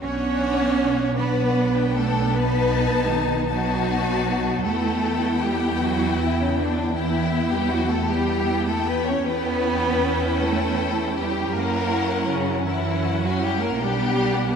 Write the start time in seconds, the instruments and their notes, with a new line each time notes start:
0.01 double bass section B1, viola section B3 D4, cello section C#4, violin section C#5 F#5
1.17 viola section B3 D4, cello section B3, violin section B4 F#5
1.76 violin section G5
1.96 cello section A3, violin section A4
2.32 viola section B3 D#4, cello section B3, violin section B4 A5
3.11 cello section D#3, violin section D#4
3.49 cello section F#3, viola section B3 D#4, violin section F#4 A5
4.64 double bass section E2, cello section A3, viola section B3 E4, violin section A4 G5
5.43 cello section G3, violin section G4
5.81 cello section F#3, violin section F#4
6.19 cello section E3, violin section E4
6.38 cello section C#3, violin section C#4
6.57 cello section D3, violin section D4
6.94 cello section E3, viola section B3 E4, violin section E4 G5
7.52 cello section G3, violin section G4
7.71 cello section F#3, violin section F#4
7.90 cello section A3, violin section A4
8.09 cello section G3, viola section B3 E4, violin section G4 G5
8.67 cello section A3, violin section A4
8.87 cello section B3, violin section B4
9.06 cello section C#4, violin section C#5
9.25 double bass section E2, cello section B3, viola section C#4 E4, violin section B4 G5
10.41 cello section A3, violin section A4
11.17 cello section G3, violin section G4
11.53 double bass section F#2, cello section A#3, viola section C#4 E4, violin section A#4 F#5
12.29 cello section C#3, violin section C#4
12.66 cello section E3, viola section C#4 E4, violin section E4 F#5
13.22 cello section F#3, violin section F#4
13.41 cello section G3, violin section G4
13.60 cello section A#3, violin section A#4
13.79 double bass section B1, cello section G3, viola section B3 D4, violin section G4 F#5